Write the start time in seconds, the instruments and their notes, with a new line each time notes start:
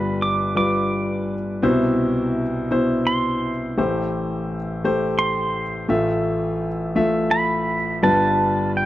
Already playing: grand piano G1 G2 G3 F4 B4, pedal steel guitar B5
0.22 pedal steel guitar D6
0.55 grand piano G3 F4 B4, pedal steel guitar D6
1.62 grand piano C2 B2 C3 E4 C5
2.71 grand piano B2 E4 C5
3.07 pedal steel guitar C6
3.77 grand piano A1 A2 A3 G4 C5
4.84 grand piano A3 G4 C5
5.19 pedal steel guitar C6
5.88 grand piano A1 A2 A3 F4 E5
6.96 grand piano A3 F4 E5
7.31 pedal steel guitar B5
8.03 grand piano G1 G2 G3 F4 B4, pedal steel guitar A5
8.77 pedal steel guitar G5